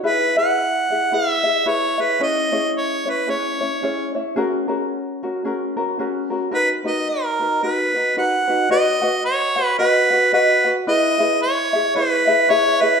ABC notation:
X:1
M:4/4
L:1/16
Q:"Swing" 1/4=111
K:B
V:1 name="Harmonica"
B2 f6 e4 c2 B2 | d4 c2 B2 c6 z2 | z16 | B2 d2 A4 B4 f4 |
d4 c4 B4 B3 z | d4 c4 B4 c2 B2 |]
V:2 name="Ukulele"
[EGBe]2 [EGBe]4 [EGe]2 [EGBe]2 [EGe]2 [EGBe]2 [EGe]2 | [CEGc]2 [CEGc]4 [CEc]2 [CEGc]2 [CEc]2 [CEGc]2 [CEc]2 | [CFGA]2 [CFGA]4 [CFA]2 [CFGA]2 [CFA]2 [CFGA]2 [CFA]2 | [DFAB]2 [DFAB]4 [DFB]2 [DFAB]2 [DFB]2 [DFAB]2 [DFB]2 |
[FBdf]2 [FBdf]4 [FBf]2 [FBdf]2 [FBf]2 [FBdf]2 [FBf]2 | [EGBe]2 [EGBe]4 [EGe]2 [EGBe]2 [EGe]2 [EGBe]2 [EGe]2 |]